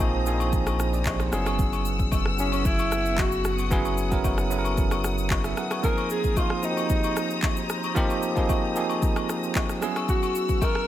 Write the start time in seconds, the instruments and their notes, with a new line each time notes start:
Already playing: sub bass A#1, tine electric piano F3 A#3 C4 D#4 G#4, string section C5 A#5 D#6
0.00 kick, high agogo, low woodblock, shaker
0.26 tine electric piano F3 A#3 C4 D4 G#4, shaker
0.34 tine electric piano D#4
0.40 high agogo, shaker
0.53 kick, shaker
0.67 cross-stick, high agogo, shaker
0.80 cross-stick, shaker
0.93 tine electric piano F4 D5, shaker
1.06 tine electric piano G4 D#5, kick, clap, high agogo, low woodblock, shaker
1.20 tine electric piano D#4 C5, cross-stick, shaker
1.32 sub bass F#1, tine electric piano F#3 B3 C#4 E4 G#4, string section B3 F#5 E6, cross-stick, shaker
1.46 cross-stick, high agogo, shaker
1.59 kick, shaker
1.73 high agogo, shaker
1.85 shaker
1.99 kick, shaker
2.12 kick, high agogo, low woodblock, shaker
2.26 cross-stick
2.38 tine electric piano F#3 B3 C#4 E4 G#4, alto saxophone C#4, shaker
2.52 alto saxophone C#4, high agogo, shaker
2.65 alto saxophone E4, kick, shaker
2.79 high agogo, shaker
2.92 cross-stick, shaker
3.06 shaker
3.18 alto saxophone F#4, kick, clap, high agogo, low woodblock, shaker
3.32 shaker
3.45 string section D#6, cross-stick, shaker
3.58 high agogo, shaker
3.70 tine electric piano F#3 B3 C#4 E4 G#4, kick, shaker
3.85 high agogo, shaker
3.98 shaker
4.11 tine electric piano F#3 B3 C#4 E4 A#4, kick, shaker
4.24 kick, high agogo, low woodblock, shaker
4.38 cross-stick, shaker
4.50 tine electric piano F#3 B3 C#4 E4 A4, shaker
4.59 tine electric piano A#4
4.65 high agogo, shaker
4.77 kick, shaker
4.91 cross-stick, high agogo, shaker
5.04 cross-stick, shaker
5.18 shaker
5.30 tine electric piano E4 C#5, kick, clap, high agogo, low woodblock, shaker
5.44 tine electric piano G#4 E5, cross-stick, shaker
5.57 tine electric piano A#4 F#5, cross-stick, shaker
5.71 tine electric piano B4 G#5, cross-stick, high agogo, shaker
5.83 tine electric piano F3 A#3 C4 D#4 G#4, alto saxophone A#4, string section C5 A#5, kick, shaker
5.97 high agogo, shaker
6.10 alto saxophone G#4, shaker
6.24 kick, shaker
6.37 alto saxophone F4, kick, high agogo, low woodblock, shaker
6.50 cross-stick
6.62 tine electric piano F3 A#3 C4 D#4 F#4, alto saxophone D#4, shaker
6.71 tine electric piano G4
6.77 high agogo, shaker
6.90 kick, shaker
7.04 high agogo, shaker
7.16 cross-stick, shaker
7.30 shaker
7.43 kick, clap, high agogo, low woodblock, shaker
7.57 shaker
7.69 cross-stick, shaker
7.83 high agogo, shaker
7.95 tine electric piano F3 A#3 C4 D#4 G4, kick, shaker
8.10 high agogo, shaker
8.22 shaker
8.35 tine electric piano F3 A#3 C4 D#4 G#4, kick, shaker
8.49 kick, high agogo, low woodblock, shaker
8.75 tine electric piano F3 A#3 C4 D#4 G#4, shaker
8.89 high agogo, shaker
9.02 kick, shaker
9.16 cross-stick, high agogo, shaker
9.29 cross-stick, shaker
9.43 shaker
9.55 kick, clap, high agogo, low woodblock, shaker
9.69 cross-stick, shaker
9.81 tine electric piano F#3 B3 C#4 E4 G#4, string section B3 F#5 E6, cross-stick, shaker
9.96 cross-stick, high agogo, shaker
10.09 alto saxophone F#4, kick, shaker
10.23 high agogo, shaker
10.35 shaker
10.49 kick, shaker
10.62 alto saxophone A#4, kick, high agogo, low woodblock, shaker
10.75 cross-stick